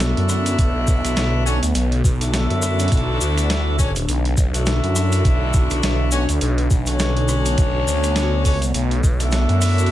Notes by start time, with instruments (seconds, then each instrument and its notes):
Already playing: detuned saw bass B1, ambient pad D3 A3 B3, horn section D4 E4 F#4 A4 E5
0.00 snare, closed hi-hat, shaker
0.17 detuned saw bass F#2, closed hi-hat
0.29 cross-stick, shaker
0.46 closed hi-hat, shaker
0.59 detuned saw bass B1, kick, closed hi-hat, shaker
0.87 detuned saw bass B1, kick, shaker
1.04 detuned saw bass B1, cross-stick, closed hi-hat, shaker
1.16 detuned saw bass B1, snare, closed hi-hat, shaker
1.46 horn section C#4 D4 F#4 A4 C#5, shaker
1.63 detuned saw bass D2, closed hi-hat, shaker
1.75 detuned saw bass B1, closed hi-hat, shaker
1.92 closed hi-hat
2.04 detuned saw bass B1, kick, shaker
2.21 horn section D4 E4 F#4 A4 E5, closed hi-hat, shaker
2.34 snare, closed hi-hat, shaker
2.50 detuned saw bass F#2, closed hi-hat
2.62 cross-stick, shaker
2.79 closed hi-hat, shaker
2.88 detuned saw bass B1, ambient pad D4, kick, closed hi-hat
2.92 closed hi-hat, shaker
2.97 closed hi-hat
3.21 detuned saw bass D2, shaker
3.38 cross-stick, closed hi-hat, shaker
3.50 snare, closed hi-hat, shaker
3.79 horn section C#4 D4 F#4 A4 C#5, kick, shaker
3.96 closed hi-hat, shaker
4.08 detuned saw bass B1, closed hi-hat, shaker
4.25 closed hi-hat
4.37 detuned saw bass B1, kick, shaker
4.54 horn section D4 E4 F#4 A4 E5, closed hi-hat, shaker
4.66 snare, closed hi-hat, shaker
4.83 detuned saw bass F#2, closed hi-hat
4.96 cross-stick, shaker
5.12 closed hi-hat, shaker
5.25 detuned saw bass B1, kick, closed hi-hat, shaker
5.54 detuned saw bass B1, kick, shaker
5.70 detuned saw bass B1, cross-stick, closed hi-hat, shaker
5.83 detuned saw bass B1, snare, closed hi-hat, shaker
6.11 horn section C#4 D4 F#4 A4 C#5, shaker
6.29 detuned saw bass D2, closed hi-hat, shaker
6.41 detuned saw bass B1, closed hi-hat, shaker
6.58 closed hi-hat
6.71 detuned saw bass B1, kick, shaker
6.86 horn section C#4 D4 F#4 A4 C#5, closed hi-hat, shaker
6.99 snare, closed hi-hat, shaker
7.17 closed hi-hat
7.28 cross-stick, shaker
7.46 closed hi-hat, shaker
7.58 detuned saw bass B1, ambient pad B3, kick, closed hi-hat, shaker
7.87 detuned saw bass D2, shaker
8.03 cross-stick, closed hi-hat, shaker
8.16 snare, closed hi-hat, shaker
8.45 detuned saw bass C#2, horn section C#4 D4 F#4 A4 C#5, kick, open hi-hat, shaker
8.62 closed hi-hat, shaker
8.74 detuned saw bass B1, closed hi-hat, shaker
8.91 closed hi-hat
9.03 detuned saw bass B1, kick, shaker
9.20 horn section D4 E4 F#4 A4 E5, closed hi-hat, shaker
9.31 snare, closed hi-hat, shaker
9.49 detuned saw bass F#2, closed hi-hat
9.61 cross-stick, open hi-hat, shaker
9.78 closed hi-hat, shaker
9.86 closed hi-hat